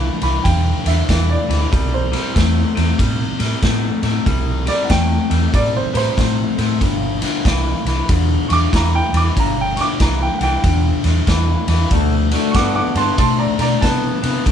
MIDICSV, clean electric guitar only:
0, 0, Header, 1, 2, 480
1, 0, Start_track
1, 0, Key_signature, 1, "major"
1, 0, Tempo, 637349
1, 1292, Time_signature, 4, 2, 24, 8
1, 10933, End_track
2, 0, Start_track
2, 0, Title_t, "Clean electric guitar"
2, 0, Program_c, 0, 27
2, 0, Note_on_c, 0, 43, 78
2, 0, Note_on_c, 0, 52, 88
2, 129, Note_off_c, 0, 43, 0
2, 129, Note_off_c, 0, 52, 0
2, 162, Note_on_c, 0, 43, 66
2, 169, Note_on_c, 0, 52, 71
2, 318, Note_off_c, 0, 43, 0
2, 321, Note_off_c, 0, 52, 0
2, 339, Note_on_c, 0, 43, 75
2, 345, Note_on_c, 0, 50, 75
2, 609, Note_off_c, 0, 43, 0
2, 612, Note_off_c, 0, 50, 0
2, 639, Note_on_c, 0, 43, 64
2, 642, Note_on_c, 0, 50, 71
2, 796, Note_off_c, 0, 43, 0
2, 798, Note_off_c, 0, 50, 0
2, 821, Note_on_c, 0, 43, 72
2, 826, Note_on_c, 0, 52, 85
2, 1090, Note_off_c, 0, 43, 0
2, 1093, Note_off_c, 0, 52, 0
2, 1118, Note_on_c, 0, 43, 76
2, 1122, Note_on_c, 0, 52, 70
2, 1276, Note_off_c, 0, 43, 0
2, 1278, Note_off_c, 0, 52, 0
2, 1289, Note_on_c, 0, 48, 70
2, 1293, Note_on_c, 0, 55, 78
2, 1564, Note_off_c, 0, 48, 0
2, 1566, Note_off_c, 0, 55, 0
2, 1594, Note_on_c, 0, 48, 75
2, 1595, Note_on_c, 0, 55, 80
2, 1754, Note_off_c, 0, 48, 0
2, 1754, Note_off_c, 0, 55, 0
2, 1772, Note_on_c, 0, 48, 77
2, 1773, Note_on_c, 0, 57, 95
2, 2046, Note_off_c, 0, 48, 0
2, 2046, Note_off_c, 0, 57, 0
2, 2071, Note_on_c, 0, 48, 68
2, 2077, Note_on_c, 0, 57, 75
2, 2233, Note_off_c, 0, 48, 0
2, 2235, Note_off_c, 0, 57, 0
2, 2245, Note_on_c, 0, 48, 78
2, 2253, Note_on_c, 0, 55, 70
2, 2522, Note_off_c, 0, 48, 0
2, 2526, Note_off_c, 0, 55, 0
2, 2552, Note_on_c, 0, 48, 60
2, 2557, Note_on_c, 0, 55, 67
2, 2713, Note_off_c, 0, 48, 0
2, 2716, Note_off_c, 0, 55, 0
2, 2734, Note_on_c, 0, 48, 79
2, 2736, Note_on_c, 0, 57, 97
2, 3006, Note_off_c, 0, 48, 0
2, 3007, Note_off_c, 0, 57, 0
2, 3035, Note_on_c, 0, 48, 69
2, 3042, Note_on_c, 0, 57, 70
2, 3195, Note_off_c, 0, 48, 0
2, 3198, Note_off_c, 0, 57, 0
2, 3208, Note_on_c, 0, 48, 75
2, 3214, Note_on_c, 0, 55, 85
2, 3484, Note_off_c, 0, 48, 0
2, 3486, Note_off_c, 0, 55, 0
2, 3509, Note_on_c, 0, 48, 78
2, 3513, Note_on_c, 0, 55, 86
2, 3672, Note_off_c, 0, 48, 0
2, 3674, Note_off_c, 0, 55, 0
2, 3689, Note_on_c, 0, 48, 79
2, 3694, Note_on_c, 0, 57, 90
2, 3964, Note_off_c, 0, 48, 0
2, 3966, Note_off_c, 0, 57, 0
2, 3992, Note_on_c, 0, 48, 75
2, 3994, Note_on_c, 0, 57, 78
2, 4153, Note_off_c, 0, 48, 0
2, 4154, Note_off_c, 0, 57, 0
2, 4166, Note_on_c, 0, 48, 67
2, 4167, Note_on_c, 0, 55, 94
2, 4442, Note_off_c, 0, 48, 0
2, 4443, Note_off_c, 0, 55, 0
2, 4472, Note_on_c, 0, 48, 58
2, 4476, Note_on_c, 0, 55, 77
2, 4633, Note_off_c, 0, 48, 0
2, 4635, Note_off_c, 0, 55, 0
2, 4648, Note_on_c, 0, 48, 78
2, 4651, Note_on_c, 0, 57, 81
2, 4923, Note_off_c, 0, 48, 0
2, 4925, Note_off_c, 0, 57, 0
2, 4956, Note_on_c, 0, 48, 70
2, 4959, Note_on_c, 0, 57, 78
2, 5115, Note_off_c, 0, 48, 0
2, 5117, Note_off_c, 0, 57, 0
2, 5125, Note_on_c, 0, 43, 74
2, 5128, Note_on_c, 0, 50, 76
2, 5402, Note_off_c, 0, 43, 0
2, 5404, Note_off_c, 0, 50, 0
2, 5435, Note_on_c, 0, 43, 77
2, 5440, Note_on_c, 0, 50, 87
2, 5595, Note_off_c, 0, 43, 0
2, 5597, Note_off_c, 0, 50, 0
2, 5611, Note_on_c, 0, 43, 80
2, 5618, Note_on_c, 0, 52, 86
2, 5885, Note_off_c, 0, 43, 0
2, 5888, Note_off_c, 0, 52, 0
2, 5918, Note_on_c, 0, 43, 67
2, 5921, Note_on_c, 0, 52, 77
2, 6076, Note_off_c, 0, 43, 0
2, 6077, Note_off_c, 0, 52, 0
2, 6093, Note_on_c, 0, 43, 79
2, 6095, Note_on_c, 0, 50, 89
2, 6366, Note_off_c, 0, 43, 0
2, 6367, Note_off_c, 0, 50, 0
2, 6402, Note_on_c, 0, 43, 67
2, 6405, Note_on_c, 0, 50, 73
2, 6558, Note_off_c, 0, 43, 0
2, 6560, Note_off_c, 0, 50, 0
2, 6573, Note_on_c, 0, 43, 78
2, 6576, Note_on_c, 0, 52, 100
2, 6846, Note_off_c, 0, 43, 0
2, 6847, Note_off_c, 0, 52, 0
2, 6879, Note_on_c, 0, 43, 73
2, 6885, Note_on_c, 0, 52, 70
2, 7037, Note_off_c, 0, 43, 0
2, 7039, Note_off_c, 0, 52, 0
2, 7057, Note_on_c, 0, 43, 81
2, 7062, Note_on_c, 0, 50, 86
2, 7328, Note_off_c, 0, 43, 0
2, 7330, Note_off_c, 0, 50, 0
2, 7368, Note_on_c, 0, 43, 74
2, 7368, Note_on_c, 0, 50, 83
2, 7521, Note_off_c, 0, 43, 0
2, 7521, Note_off_c, 0, 50, 0
2, 7533, Note_on_c, 0, 43, 74
2, 7538, Note_on_c, 0, 52, 78
2, 7806, Note_off_c, 0, 43, 0
2, 7808, Note_off_c, 0, 52, 0
2, 7843, Note_on_c, 0, 43, 72
2, 7845, Note_on_c, 0, 52, 65
2, 7999, Note_off_c, 0, 43, 0
2, 7999, Note_off_c, 0, 52, 0
2, 8015, Note_on_c, 0, 43, 78
2, 8019, Note_on_c, 0, 50, 89
2, 8287, Note_off_c, 0, 43, 0
2, 8289, Note_off_c, 0, 50, 0
2, 8317, Note_on_c, 0, 43, 65
2, 8319, Note_on_c, 0, 50, 68
2, 8476, Note_off_c, 0, 43, 0
2, 8476, Note_off_c, 0, 50, 0
2, 8494, Note_on_c, 0, 43, 80
2, 8496, Note_on_c, 0, 52, 89
2, 8766, Note_off_c, 0, 43, 0
2, 8767, Note_off_c, 0, 52, 0
2, 8796, Note_on_c, 0, 43, 71
2, 8799, Note_on_c, 0, 52, 75
2, 8955, Note_off_c, 0, 43, 0
2, 8957, Note_off_c, 0, 52, 0
2, 8973, Note_on_c, 0, 50, 71
2, 8978, Note_on_c, 0, 57, 83
2, 9246, Note_off_c, 0, 50, 0
2, 9248, Note_off_c, 0, 57, 0
2, 9277, Note_on_c, 0, 50, 74
2, 9282, Note_on_c, 0, 57, 76
2, 9436, Note_off_c, 0, 50, 0
2, 9438, Note_off_c, 0, 57, 0
2, 9455, Note_on_c, 0, 50, 80
2, 9459, Note_on_c, 0, 59, 84
2, 9727, Note_off_c, 0, 50, 0
2, 9729, Note_off_c, 0, 59, 0
2, 9752, Note_on_c, 0, 50, 79
2, 9759, Note_on_c, 0, 59, 68
2, 9913, Note_off_c, 0, 50, 0
2, 9916, Note_off_c, 0, 59, 0
2, 9924, Note_on_c, 0, 50, 74
2, 9930, Note_on_c, 0, 57, 88
2, 10202, Note_off_c, 0, 50, 0
2, 10204, Note_off_c, 0, 57, 0
2, 10235, Note_on_c, 0, 50, 63
2, 10237, Note_on_c, 0, 57, 82
2, 10394, Note_off_c, 0, 50, 0
2, 10396, Note_off_c, 0, 57, 0
2, 10407, Note_on_c, 0, 50, 74
2, 10408, Note_on_c, 0, 59, 91
2, 10683, Note_off_c, 0, 50, 0
2, 10684, Note_off_c, 0, 59, 0
2, 10706, Note_on_c, 0, 50, 73
2, 10711, Note_on_c, 0, 59, 80
2, 10870, Note_off_c, 0, 50, 0
2, 10873, Note_off_c, 0, 59, 0
2, 10888, Note_on_c, 0, 50, 76
2, 10890, Note_on_c, 0, 57, 80
2, 10933, Note_off_c, 0, 50, 0
2, 10933, Note_off_c, 0, 57, 0
2, 10933, End_track
0, 0, End_of_file